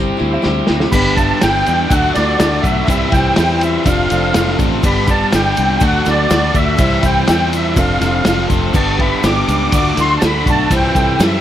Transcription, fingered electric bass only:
0, 0, Header, 1, 2, 480
1, 0, Start_track
1, 0, Key_signature, 1, "major"
1, 0, Tempo, 488998
1, 910, Time_signature, 4, 2, 24, 8
1, 11198, End_track
2, 0, Start_track
2, 0, Title_t, "Fingered electric bass"
2, 0, Program_c, 0, 33
2, 0, Note_on_c, 0, 31, 84
2, 106, Note_off_c, 0, 31, 0
2, 206, Note_on_c, 0, 38, 83
2, 360, Note_off_c, 0, 38, 0
2, 446, Note_on_c, 0, 38, 88
2, 600, Note_off_c, 0, 38, 0
2, 684, Note_on_c, 0, 38, 82
2, 839, Note_off_c, 0, 38, 0
2, 909, Note_on_c, 0, 31, 99
2, 1295, Note_off_c, 0, 31, 0
2, 1408, Note_on_c, 0, 31, 97
2, 1593, Note_off_c, 0, 31, 0
2, 1647, Note_on_c, 0, 40, 83
2, 1833, Note_off_c, 0, 40, 0
2, 1876, Note_on_c, 0, 38, 87
2, 2066, Note_off_c, 0, 38, 0
2, 2125, Note_on_c, 0, 38, 86
2, 2312, Note_off_c, 0, 38, 0
2, 2357, Note_on_c, 0, 38, 89
2, 2547, Note_off_c, 0, 38, 0
2, 2588, Note_on_c, 0, 35, 78
2, 2781, Note_off_c, 0, 35, 0
2, 2831, Note_on_c, 0, 36, 96
2, 3023, Note_off_c, 0, 36, 0
2, 3073, Note_on_c, 0, 36, 90
2, 3265, Note_off_c, 0, 36, 0
2, 3317, Note_on_c, 0, 40, 90
2, 3699, Note_off_c, 0, 40, 0
2, 3790, Note_on_c, 0, 29, 91
2, 3982, Note_off_c, 0, 29, 0
2, 4041, Note_on_c, 0, 29, 86
2, 4229, Note_off_c, 0, 29, 0
2, 4274, Note_on_c, 0, 29, 91
2, 4465, Note_off_c, 0, 29, 0
2, 4507, Note_on_c, 0, 33, 85
2, 4700, Note_off_c, 0, 33, 0
2, 4744, Note_on_c, 0, 31, 90
2, 5131, Note_off_c, 0, 31, 0
2, 5243, Note_on_c, 0, 31, 95
2, 5430, Note_off_c, 0, 31, 0
2, 5477, Note_on_c, 0, 36, 88
2, 5666, Note_off_c, 0, 36, 0
2, 5706, Note_on_c, 0, 38, 85
2, 5899, Note_off_c, 0, 38, 0
2, 5954, Note_on_c, 0, 38, 84
2, 6145, Note_off_c, 0, 38, 0
2, 6192, Note_on_c, 0, 38, 91
2, 6383, Note_off_c, 0, 38, 0
2, 6430, Note_on_c, 0, 38, 82
2, 6622, Note_off_c, 0, 38, 0
2, 6668, Note_on_c, 0, 36, 100
2, 6861, Note_off_c, 0, 36, 0
2, 6906, Note_on_c, 0, 36, 91
2, 7099, Note_off_c, 0, 36, 0
2, 7157, Note_on_c, 0, 40, 96
2, 7626, Note_on_c, 0, 29, 90
2, 7641, Note_off_c, 0, 40, 0
2, 7820, Note_off_c, 0, 29, 0
2, 7861, Note_on_c, 0, 29, 85
2, 8056, Note_off_c, 0, 29, 0
2, 8108, Note_on_c, 0, 29, 91
2, 8301, Note_off_c, 0, 29, 0
2, 8345, Note_on_c, 0, 29, 83
2, 8538, Note_off_c, 0, 29, 0
2, 8581, Note_on_c, 0, 31, 91
2, 8969, Note_off_c, 0, 31, 0
2, 9066, Note_on_c, 0, 31, 93
2, 9259, Note_off_c, 0, 31, 0
2, 9308, Note_on_c, 0, 37, 86
2, 9501, Note_off_c, 0, 37, 0
2, 9548, Note_on_c, 0, 38, 81
2, 9740, Note_off_c, 0, 38, 0
2, 9790, Note_on_c, 0, 38, 89
2, 9982, Note_off_c, 0, 38, 0
2, 10038, Note_on_c, 0, 38, 91
2, 10226, Note_off_c, 0, 38, 0
2, 10274, Note_on_c, 0, 35, 84
2, 10464, Note_off_c, 0, 35, 0
2, 10511, Note_on_c, 0, 36, 99
2, 10703, Note_off_c, 0, 36, 0
2, 10754, Note_on_c, 0, 36, 88
2, 10944, Note_off_c, 0, 36, 0
2, 10991, Note_on_c, 0, 42, 97
2, 11198, Note_off_c, 0, 42, 0
2, 11198, End_track
0, 0, End_of_file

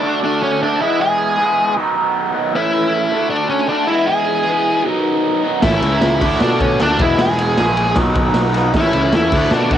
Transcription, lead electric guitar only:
0, 0, Header, 1, 2, 480
1, 0, Start_track
1, 0, Tempo, 387847
1, 1229, Time_signature, 4, 2, 24, 8
1, 12103, End_track
2, 0, Start_track
2, 0, Title_t, "Lead electric guitar"
2, 0, Program_c, 0, 29
2, 0, Note_on_c, 0, 62, 98
2, 237, Note_off_c, 0, 62, 0
2, 303, Note_on_c, 0, 62, 95
2, 511, Note_off_c, 0, 62, 0
2, 530, Note_on_c, 0, 61, 94
2, 766, Note_off_c, 0, 61, 0
2, 778, Note_on_c, 0, 62, 93
2, 1005, Note_off_c, 0, 62, 0
2, 1010, Note_on_c, 0, 64, 96
2, 1236, Note_on_c, 0, 68, 113
2, 1246, Note_off_c, 0, 64, 0
2, 2141, Note_off_c, 0, 68, 0
2, 3170, Note_on_c, 0, 64, 99
2, 4065, Note_off_c, 0, 64, 0
2, 4085, Note_on_c, 0, 62, 94
2, 4316, Note_off_c, 0, 62, 0
2, 4328, Note_on_c, 0, 61, 91
2, 4560, Note_off_c, 0, 61, 0
2, 4565, Note_on_c, 0, 62, 99
2, 4795, Note_off_c, 0, 62, 0
2, 4795, Note_on_c, 0, 64, 94
2, 5030, Note_on_c, 0, 68, 108
2, 5055, Note_off_c, 0, 64, 0
2, 5954, Note_off_c, 0, 68, 0
2, 6967, Note_on_c, 0, 64, 97
2, 7943, Note_off_c, 0, 64, 0
2, 7948, Note_on_c, 0, 62, 92
2, 8185, Note_off_c, 0, 62, 0
2, 8185, Note_on_c, 0, 61, 91
2, 8433, Note_off_c, 0, 61, 0
2, 8433, Note_on_c, 0, 62, 90
2, 8682, Note_off_c, 0, 62, 0
2, 8682, Note_on_c, 0, 64, 93
2, 8919, Note_off_c, 0, 64, 0
2, 8924, Note_on_c, 0, 68, 115
2, 9825, Note_off_c, 0, 68, 0
2, 10848, Note_on_c, 0, 64, 96
2, 11311, Note_off_c, 0, 64, 0
2, 11326, Note_on_c, 0, 64, 103
2, 11765, Note_off_c, 0, 64, 0
2, 11804, Note_on_c, 0, 62, 88
2, 12040, Note_on_c, 0, 66, 97
2, 12044, Note_off_c, 0, 62, 0
2, 12103, Note_off_c, 0, 66, 0
2, 12103, End_track
0, 0, End_of_file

